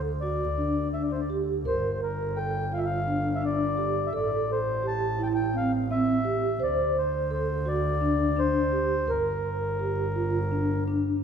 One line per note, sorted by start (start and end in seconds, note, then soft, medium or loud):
0.00 1.67 D2 medium
0.21 0.45 F#4 medium
0.21 0.89 D5 medium
0.58 0.80 D4 medium
0.94 1.16 D4 medium
0.94 1.03 E5 medium
1.03 1.12 D5 medium
1.12 1.21 C5 medium
1.20 1.30 D5 medium
1.30 1.52 G4 medium
1.65 4.15 G1 medium
1.65 2.10 A#4 medium
1.65 1.92 C5 medium
1.94 2.01 C5 medium
2.03 2.38 A#4 medium
2.36 2.58 A4 medium
2.36 2.73 G5 medium
2.72 2.94 F4 medium
2.72 2.80 F5 medium
2.77 2.85 E5 medium
2.86 3.44 F5 medium
3.07 3.29 D4 medium
3.35 3.42 E5 medium
3.42 3.64 D4 medium
3.42 4.10 D5 medium
3.77 4.00 G4 medium
4.06 4.13 E5 medium
4.13 6.62 A1 medium
4.13 4.57 A4 medium
4.13 4.51 D5 medium
4.52 4.86 C5 medium
4.83 5.05 G4 medium
4.87 5.22 A5 medium
5.19 5.41 E4 medium
5.19 5.28 G5 medium
5.26 5.33 A5 medium
5.35 5.56 G5 medium
5.54 5.76 C4 medium
5.54 5.72 F5 medium
5.91 6.12 C4 medium
5.91 6.62 E5 loud
6.25 6.46 G4 medium
6.60 9.10 D2 medium
6.60 7.03 C5 medium
6.60 6.97 D5 medium
6.98 7.32 C5 medium
7.30 7.52 A4 medium
7.30 7.68 C5 medium
7.66 7.88 F#4 medium
7.66 8.40 D5 medium
8.01 8.23 D4 medium
8.36 8.59 D4 medium
8.36 9.11 C5 medium
8.72 8.94 G4 medium
9.08 11.24 G1 medium
9.08 9.52 A#4 medium
9.08 10.84 A#4 medium
9.79 10.01 G4 medium
10.16 10.38 F4 medium
10.52 10.74 D4 medium
10.87 11.10 D4 medium